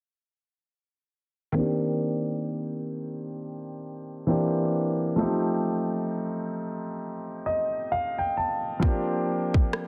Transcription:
1.52 grand piano D#3 A#3 C4
1.57 grand piano D4 G4
4.27 grand piano E3 A#3 C4 D4 G4
5.16 grand piano F3 A3 C4
5.21 grand piano D#4 G4
7.46 grand piano D#5
7.92 grand piano F5
8.18 grand piano G5
8.37 grand piano A5
8.80 grand piano F3 A#3 C4, kick
8.84 grand piano D4 G4
9.54 kick
9.73 cross-stick

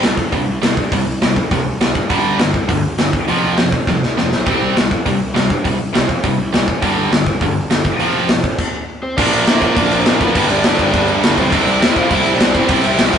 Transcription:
0.03 picked electric bass C2, distorted electric guitar C3 G3, snare, open hi-hat
0.17 picked electric bass F2, kick
0.32 picked electric bass G2, distorted electric guitar C3 G3, kick, open hi-hat
0.47 picked electric bass C2
0.61 picked electric bass C2, distorted electric guitar C3 G3, snare, open hi-hat
0.77 picked electric bass G2, kick
0.92 picked electric bass C2, distorted electric guitar C3 G3, kick, open hi-hat
1.06 picked electric bass C2
1.21 picked electric bass C2, distorted electric guitar C3 G3, snare, open hi-hat
1.36 picked electric bass F2, kick
1.51 picked electric bass G2, distorted electric guitar C3 G3, kick, open hi-hat
1.65 picked electric bass C2
1.80 picked electric bass C2, distorted electric guitar C3 G3, snare, open hi-hat
1.95 picked electric bass G2, kick
2.10 picked electric bass G1, distorted electric guitar G2 D3 G3, kick, open hi-hat
2.25 picked electric bass G1
2.39 picked electric bass G1, distorted electric guitar G2 D3, snare, open hi-hat
2.54 picked electric bass C2, kick
2.68 picked electric bass D2, distorted electric guitar G2 D3, kick, open hi-hat
2.85 picked electric bass G1
2.98 picked electric bass G1, distorted electric guitar G2 D3, snare, open hi-hat
3.13 picked electric bass F1, kick
3.28 picked electric bass F1, distorted electric guitar F2 C3 F3, open hi-hat
3.44 picked electric bass F1
3.57 picked electric bass F1, distorted electric guitar F2 C3, snare, open hi-hat
3.72 picked electric bass A1, kick
3.87 picked electric bass C2, distorted electric guitar F2 C3, kick, snare
4.03 picked electric bass F1, snare
4.18 picked electric bass F1, distorted electric guitar F2 C3, snare
4.32 picked electric bass B1, snare
4.46 picked electric bass C2, distorted electric guitar C3 G3 C4, kick, open hi-hat
4.62 picked electric bass C2
4.76 picked electric bass C2, distorted electric guitar C3 G3, snare, open hi-hat
4.91 picked electric bass F2, kick
5.06 picked electric bass G2, distorted electric guitar C3 G3, kick, open hi-hat
5.21 picked electric bass C2
5.34 picked electric bass C2, distorted electric guitar C3 G3, snare, open hi-hat
5.50 picked electric bass G2, kick
5.65 picked electric bass C2, distorted electric guitar C3 G3, kick, open hi-hat
5.79 picked electric bass C2
5.93 picked electric bass C2, distorted electric guitar C3 G3, snare, open hi-hat
6.09 picked electric bass F2, kick
6.23 picked electric bass G2, distorted electric guitar C3 G3, kick, open hi-hat
6.38 picked electric bass C2
6.53 picked electric bass C2, distorted electric guitar C3 G3, snare, open hi-hat
6.68 picked electric bass F1, kick
6.82 picked electric bass G1, distorted electric guitar G2 D3 G3, kick, open hi-hat
6.95 picked electric bass G1
7.10 picked electric bass G1, distorted electric guitar G2 D3, snare, open hi-hat
7.26 picked electric bass C2, kick
7.41 picked electric bass D2, distorted electric guitar G2 D3, kick, open hi-hat
7.55 picked electric bass G1
7.70 picked electric bass G1, distorted electric guitar G2 D3, snare, open hi-hat
7.85 picked electric bass F1, kick
7.99 picked electric bass F1, distorted electric guitar F2 C3 F3, open hi-hat
8.14 picked electric bass F1
8.28 picked electric bass F1, distorted electric guitar F2 C3, snare, open hi-hat
8.44 picked electric bass A1, kick
8.59 kick, crash
9.03 overdriven electric guitar C4 C5
9.17 picked electric bass A#1, distorted electric guitar A#2 D3 F3 A#3 D4, overdriven electric guitar D4 D5, kick, crash
9.33 picked electric bass A#1, crash
9.47 picked electric bass D2, distorted electric guitar A#2 F3 A#3, overdriven electric guitar E4 E5, snare, crash
9.61 picked electric bass A#2, distorted electric guitar A#2 D3 F3 A#3 D4, overdriven electric guitar F4 F5, kick, crash
9.76 picked electric bass A#1, distorted electric guitar A#2 F3 A#3, overdriven electric guitar D4 D5, kick, crash
9.91 picked electric bass A#1, crash
9.99 overdriven electric guitar C4 C5
10.06 picked electric bass A#1, distorted electric guitar A#2 F3 A#3, snare, crash
10.21 picked electric bass D2, overdriven electric guitar B3 B4, kick, crash
10.35 picked electric bass G1, distorted electric guitar G2 D3 G3 B3 D4, kick, crash
10.50 picked electric bass G1, overdriven electric guitar D4 D5, crash
10.64 picked electric bass G1, distorted electric guitar G2 D3 G3, snare, crash
10.78 picked electric bass G1, distorted electric guitar G2 D3 G3 B3 D4, overdriven electric guitar D4 D5, kick, crash
10.94 picked electric bass G1, distorted electric guitar G2 D3 G3, kick, crash
11.08 crash
11.23 picked electric bass G1, distorted electric guitar G2 D3 G3, snare, crash
11.38 picked electric bass B1, overdriven electric guitar C4 C5, kick, crash
11.51 picked electric bass C2, distorted electric guitar C3 G3 C4 E4, overdriven electric guitar D4 D5, kick, crash
11.65 picked electric bass C2, crash
11.81 picked electric bass E2, distorted electric guitar C3 G3 C4, overdriven electric guitar E4 E5, snare, crash
11.95 picked electric bass C3, distorted electric guitar C3 G3 C4 E4, overdriven electric guitar F4 F5, kick, crash
12.10 picked electric bass C2, distorted electric guitar C3 G3 C4, overdriven electric guitar E4, kick, crash
12.14 overdriven electric guitar E5
12.25 picked electric bass C2, crash
12.35 picked electric bass C2, distorted electric guitar C4, overdriven electric guitar D4 D5
12.39 distorted electric guitar C3 G3, snare, crash
12.54 picked electric bass E2, overdriven electric guitar C4 C5, kick, crash
12.68 picked electric bass C2, distorted electric guitar C3 G3 C4 E4, kick, crash
12.82 picked electric bass C2, crash
12.86 overdriven electric guitar E4 E5
12.97 picked electric bass C2, distorted electric guitar C3 G3 C4, snare, crash
13.13 picked electric bass C2, distorted electric guitar C4 E4, overdriven electric guitar E4, kick, crash

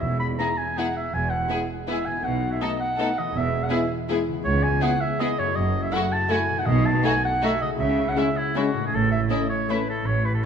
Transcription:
Already playing: harp E3 B3 E4 G#4
0.00 double bass section E1, cello section E2, timpani E2, oboe E5
0.20 oboe B5
0.38 french horn section G#3 E4, viola section B3, violin section E4 G#4, oboe A#5
0.58 oboe G#5
0.76 french horn section G#3 E4, viola section B3, violin section E4 G#4, oboe F#5
0.97 oboe E5
1.13 double bass section E1, cello section E2, oboe G#5
1.30 oboe F#5
1.49 french horn section G#3 E4, viola section B3, violin section E4 G#4
1.88 french horn section G#3 E4, viola section B3, violin section E4 G#4, oboe E5
2.06 harp B2, oboe G#5
2.11 harp B3
2.16 harp D#4
2.20 cello section B2, harp A4
2.24 double bass section B1, oboe F#5
2.52 oboe E5
2.61 french horn section A3 D#4, viola section B3, violin section D#4 A4, oboe D#5
2.80 oboe F#5
2.98 french horn section A3 D#4, viola section B3, violin section D#4 A4
3.18 harp E3, oboe D#5
3.22 harp B3
3.27 harp E4
3.32 double bass section E1, cello section E2, harp G#4
3.37 oboe E5
3.64 oboe F#5
3.70 french horn section G#3 E4, viola section B3, violin section E4 G#4, oboe E5
4.09 french horn section G#3 E4, viola section B3, violin section E4 G#4
4.28 harp C#3
4.33 harp B3
4.38 harp E4
4.42 cello section C#2, double bass section C#2, harp G#4, oboe C#5
4.63 oboe G#5
4.82 viola section B3, french horn section B3 E4, violin section E4 G#4, oboe F#5
5.01 oboe E5
5.20 viola section B3, french horn section B3 E4, violin section E4 G#4, oboe D#5
5.39 harp F#2, oboe C#5
5.43 harp A3
5.48 harp E4
5.52 cello section F#2, harp F#4, oboe D#5
5.56 double bass section F#1
5.83 oboe E5
5.92 french horn section A3 E4, viola section A3, violin section E4 F#4, oboe F#5
6.13 oboe A5
6.29 viola section A3, french horn section A3 E4, violin section E4 F#4, oboe G#5
6.49 harp B2
6.53 harp A3
6.58 harp D#4, oboe F#5
6.63 timpani B2, harp F#4, oboe D#5
6.67 double bass section B1, cello section B2
6.86 oboe A5
7.03 french horn section A3 F#4, viola section A3, violin section D#4 F#4, oboe G#5
7.25 oboe F#5
7.42 french horn section A3 F#4, viola section A3, violin section D#4 F#4, oboe E5
7.61 harp C#3, oboe D#5
7.66 harp G#3
7.70 harp C#4
7.75 harp E4
7.80 double bass section C#2, cello section C#3, oboe E5
8.09 oboe F#5
8.15 french horn section G#3 C#4, viola section G#3, violin section C#4 E4, oboe E5
8.38 oboe E4
8.55 viola section G#3, french horn section G#3 C#4, violin section C#4 E4, oboe F#4
8.74 harp A2
8.79 harp A3
8.83 harp C#4, oboe G#4
8.88 harp E4
8.92 double bass section A1, cello section A2, oboe A4
9.12 oboe E5
9.29 viola section A3, french horn section A3 C#4, violin section C#4 E4, oboe D#5
9.50 oboe C#5
9.69 viola section A3, french horn section A3 C#4, violin section C#4 E4, oboe B4
9.90 oboe A4
10.05 double bass section A1, cello section A2, oboe C#5
10.25 oboe B4
10.35 oboe A4

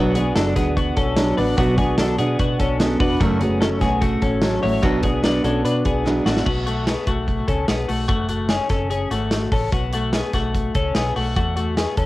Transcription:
Already playing: fingered electric bass B1, steel-string acoustic guitar B2 F#3 B3 D4 F#4, clean electric guitar B3 F#4
0.15 clean electric guitar B3 G#4, steel-string acoustic guitar B3 D4 F#4, closed hi-hat
0.35 fingered electric bass F#1, steel-string acoustic guitar F#3 B3 D4 F#4, clean electric guitar D4 A4, snare, closed hi-hat
0.56 fingered electric bass D2, clean electric guitar B3 G#4, steel-string acoustic guitar B3 D4 F#4, kick, snare, closed hi-hat
0.77 clean electric guitar B3 F#4, kick, closed hi-hat
0.97 fingered electric bass B1, clean electric guitar C#4 A4, kick, closed hi-hat
1.17 steel-string acoustic guitar F#3 B3 D4 F#4, snare, closed hi-hat
1.37 fingered electric bass A1, steel-string acoustic guitar B3 D4 F#4, clean electric guitar D4 B4, open hi-hat
1.57 fingered electric bass B1, steel-string acoustic guitar B2 F#3 B3 D4 F#4, clean electric guitar B3 F#4, kick, closed hi-hat
1.77 clean electric guitar B3 G#4, steel-string acoustic guitar B3 D4 F#4, kick, closed hi-hat
1.98 steel-string acoustic guitar F#3 B3 D4 F#4, clean electric guitar D4 A4, snare, closed hi-hat
2.18 fingered electric bass B2, clean electric guitar B3 G#4, steel-string acoustic guitar B3 D4 F#4, closed hi-hat
2.39 fingered electric bass B2, clean electric guitar B3 F#4, kick, closed hi-hat
2.60 fingered electric bass B1, clean electric guitar C#4 A4, kick, closed hi-hat
2.79 steel-string acoustic guitar F#3 B3 D4 F#4, snare, closed hi-hat
3.00 fingered electric bass E1, steel-string acoustic guitar B3 D4 F#4, clean electric guitar D4 B4, kick, open hi-hat
3.20 fingered electric bass F#1, steel-string acoustic guitar F#2 C#3 F#3 A3 C#4 F#4, clean electric guitar A3 F#4, kick, closed hi-hat
3.41 steel-string acoustic guitar F#3 A3 C#4 F#4, clean electric guitar B3 G#4, closed hi-hat
3.61 steel-string acoustic guitar F#3 A3 C#4 F#4, clean electric guitar C#4 A4, snare, closed hi-hat
3.80 fingered electric bass B1, steel-string acoustic guitar F#3 A3 C#4 F#4, clean electric guitar B3 G#4, kick, snare, closed hi-hat
4.02 clean electric guitar A3 F#4, kick, closed hi-hat
4.22 fingered electric bass A1, clean electric guitar C#4 A4, kick, closed hi-hat
4.42 steel-string acoustic guitar F#3 A3 C#4 F#4, snare, closed hi-hat
4.62 fingered electric bass A1, steel-string acoustic guitar F#3 A3 C#4 F#4, clean electric guitar E4 C#5, open hi-hat
4.82 fingered electric bass B1, steel-string acoustic guitar B2 F#3 B3 D4 F#4, clean electric guitar B3 F#4, kick, closed hi-hat
5.03 clean electric guitar B3 G#4, steel-string acoustic guitar B3 D4 F#4, kick, closed hi-hat
5.23 steel-string acoustic guitar F#3 B3 D4 F#4, clean electric guitar D4 B4, snare, closed hi-hat
5.43 fingered electric bass B1, steel-string acoustic guitar B3 D4 F#4, clean electric guitar C#4 A4, closed hi-hat
5.65 fingered electric bass B2, clean electric guitar D4 B4, closed hi-hat
5.85 fingered electric bass B1, clean electric guitar B3 G#4, kick, closed hi-hat
6.05 steel-string acoustic guitar F#3 B3 D4 F#4, snare
6.25 fingered electric bass A1, clean electric guitar A3 F#4, steel-string acoustic guitar B3 D4 F#4, snare
6.37 snare
6.46 fingered electric bass B1, clean electric guitar B3 F#4, kick, crash
6.67 clean electric guitar A3 F#4, closed hi-hat
6.87 clean electric guitar B3 G#4, snare, closed hi-hat
7.07 fingered electric bass B1, clean electric guitar A3 F#4, kick, closed hi-hat
7.28 kick, closed hi-hat
7.48 fingered electric bass C#2, clean electric guitar C#4 A4, kick, closed hi-hat
7.68 fingered electric bass B1, clean electric guitar B3 G#4, snare, closed hi-hat
7.88 fingered electric bass B1, clean electric guitar A3 F#4, open hi-hat
8.08 fingered electric bass F#1, clean electric guitar A3 F#4, kick, closed hi-hat
8.29 clean electric guitar A3 F#4, closed hi-hat
8.49 clean electric guitar C#4 G#4, snare, closed hi-hat
8.69 fingered electric bass F#1, clean electric guitar C#4 A4, kick, snare, closed hi-hat
8.90 clean electric guitar C#4 G#4, closed hi-hat
9.11 fingered electric bass G#1, clean electric guitar A3 F#4, closed hi-hat
9.31 snare, closed hi-hat
9.52 fingered electric bass A1, clean electric guitar C#4 A4, kick, open hi-hat
9.72 fingered electric bass B1, clean electric guitar B3 F#4, kick, closed hi-hat
9.93 clean electric guitar A3 F#4, closed hi-hat
10.13 clean electric guitar B3 G#4, snare, closed hi-hat
10.33 fingered electric bass B1, clean electric guitar A3 F#4, kick, snare, closed hi-hat
10.55 kick, closed hi-hat
10.75 fingered electric bass C#2, clean electric guitar C#4 A4, kick, closed hi-hat
10.95 fingered electric bass B1, clean electric guitar B3 G#4, snare, closed hi-hat
11.16 fingered electric bass B1, clean electric guitar A3 F#4, open hi-hat
11.36 fingered electric bass E2, clean electric guitar A3 F#4, kick, closed hi-hat
11.57 clean electric guitar A3 F#4, closed hi-hat
11.77 clean electric guitar B3 G#4, snare, closed hi-hat
11.97 fingered electric bass E2, clean electric guitar C#4 A4, kick, closed hi-hat

